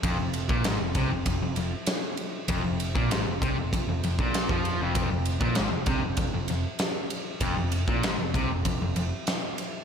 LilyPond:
<<
  \new Staff \with { instrumentName = "Distorted electric guitar" } { \clef bass \time 4/4 \key f \minor \tempo 4 = 97 f,16 f,8 bes,16 aes,16 f,16 c16 f,16 f,16 f,16 f,16 r4 r16 | f,16 f,8 bes,16 aes,16 f,16 c16 f,16 f,16 f,16 f,16 bes,8 f8 f,16 | f,16 f,8 bes,16 aes,16 f,16 c16 f,16 f,16 f,16 f,16 r4 r16 | f,16 f,8 bes,16 aes,16 f,16 c16 f,16 f,16 f,16 f,16 r4 r16 | }
  \new Staff \with { instrumentName = "Overdriven electric guitar" } { \clef bass \time 4/4 \key f \minor f,16 f,8 bes,16 aes,16 f,16 c16 f,16 f,16 f,16 f,16 r4 r16 | f,16 f,8 bes,16 aes,16 f,16 c16 f,16 f,16 f,16 f,16 bes,8 f8 f,16 | f,16 f,8 bes,16 aes,16 f,16 c16 f,16 f,16 f,16 f,16 r4 r16 | f,16 f,8 bes,16 aes,16 f,16 c16 f,16 f,16 f,16 f,16 r4 r16 | }
  \new Staff \with { instrumentName = "Picked electric bass" } { \clef bass \time 4/4 \key f \minor f,,16 f,,8 bes,,16 aes,,16 f,,16 c,16 f,,16 f,,16 f,,16 f,,16 r4 r16 | f,,16 f,,8 bes,,16 aes,,16 f,,16 c,16 f,,16 f,,16 f,,16 f,,16 bes,,8 f,8 f,,16 | f,,16 f,,8 bes,,16 aes,,16 f,,16 c,16 f,,16 f,,16 f,,16 f,,16 r4 r16 | f,,16 f,,8 bes,,16 aes,,16 f,,16 c,16 f,,16 f,,16 f,,16 f,,16 r4 r16 | }
  \new DrumStaff \with { instrumentName = "Drums" } \drummode { \time 4/4 <bd cymr>8 cymr16 bd16 <cymr sn>8 <bd cymr>8 <bd cymr>8 cymr8 <cymr sn>8 cymr8 | <bd cymr>8 cymr16 bd16 <cymr sn>8 <bd cymr>8 <bd cymr>8 cymr16 bd16 <cymr sn>16 bd16 cymr8 | <bd cymr>8 cymr16 bd16 <cymr sn>8 <bd cymr>8 <bd cymr>8 cymr8 <cymr sn>8 cymr8 | <bd cymr>8 cymr16 bd16 <cymr sn>8 <bd cymr>8 <bd cymr>8 cymr8 <cymr sn>8 cymr8 | }
>>